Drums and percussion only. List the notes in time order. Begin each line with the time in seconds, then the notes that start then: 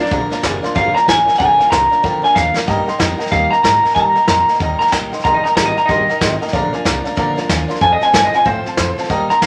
0.06 snare
0.11 kick, snare
0.31 snare
0.43 kick, snare, hi-hat pedal
0.64 snare
0.76 kick, snare
0.96 snare
1.08 kick, snare, hi-hat pedal
1.28 snare
1.34 snare
1.40 kick, snare
1.60 snare
1.72 kick, snare, hi-hat pedal
1.92 snare
2.04 kick, snare
2.24 snare
2.36 kick, snare, hi-hat pedal
2.57 snare
2.68 kick, snare
2.88 snare
3.00 kick, snare, hi-hat pedal
3.20 snare
3.26 snare
3.32 kick, snare
3.53 snare
3.64 kick, snare, hi-hat pedal
3.85 snare
3.90 snare
3.96 kick, snare
4.15 snare
4.28 kick, snare, hi-hat pedal
4.48 snare
4.55 snare
4.60 kick, snare
4.80 snare
4.87 snare
4.92 kick, snare, hi-hat pedal
5.13 snare
5.19 snare
5.25 kick, snare
5.45 snare
5.57 kick, snare, hi-hat pedal
5.77 snare
5.89 kick, snare
6.09 snare
6.21 kick, snare, hi-hat pedal
6.42 snare
6.48 snare
6.53 kick, snare
6.74 snare
6.85 kick, snare, hi-hat pedal
7.05 snare
7.17 kick, snare
7.37 snare
7.49 kick, snare, hi-hat pedal
7.70 snare
7.75 snare
7.81 kick, snare
8.01 snare
8.14 kick, snare, hi-hat pedal
8.33 snare
8.46 kick, snare
8.66 snare
8.77 kick, snare, hi-hat pedal
8.98 snare
9.04 snare
9.10 kick, snare
9.30 snare
9.42 kick, snare, hi-hat pedal